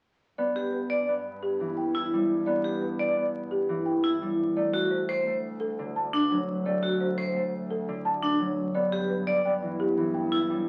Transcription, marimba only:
0.38 0.60 D5 medium
0.72 0.95 B4 soft
1.43 1.65 G4 medium
1.77 2.00 G5 soft
2.46 2.69 D5 medium
2.82 3.04 B4 soft
3.51 3.74 G4 medium
3.86 4.09 G5 soft
4.57 4.79 D5 medium
4.91 5.14 C5 medium
5.60 5.83 A4 medium
5.96 6.18 A5 medium
6.66 6.88 D5 medium
7.01 7.23 C5 medium
7.71 7.93 A4 medium
8.05 8.28 A5 medium
8.75 8.97 D5 medium
9.10 9.32 B4 medium
9.45 9.68 G5 medium
9.80 10.02 G4 medium
10.14 10.37 G5 soft

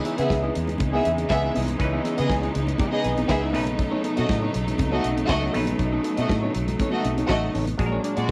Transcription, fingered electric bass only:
0.19 0.27 C#3 medium
0.31 0.49 C#2 loud
0.56 0.74 E2 medium
0.80 0.99 C#2 loud
1.06 1.24 E2 medium
1.30 1.48 C#2 medium
1.57 1.74 C2 medium
1.80 1.98 C#2 loud
2.20 2.28 C#3 medium
2.30 2.48 C#2 medium
2.56 2.74 C#2 medium
3.06 3.24 B1 medium
3.30 3.55 C#2 loud
3.55 3.92 B1 loud
4.19 4.27 B2 medium
4.30 4.48 A2 medium
4.55 4.73 B1 medium
4.80 4.98 C#2 loud
5.05 5.23 B1 medium
5.30 5.48 C#2 loud
5.55 5.73 A#1 medium
5.80 5.98 B1 loud
6.18 6.27 B2 medium
6.30 6.48 A2 medium
6.55 6.73 B1 medium
7.05 7.23 B1 medium
7.30 7.48 A1 loud
7.56 7.73 A1 medium
7.79 7.98 A#1 loud
8.18 8.26 A#2 medium

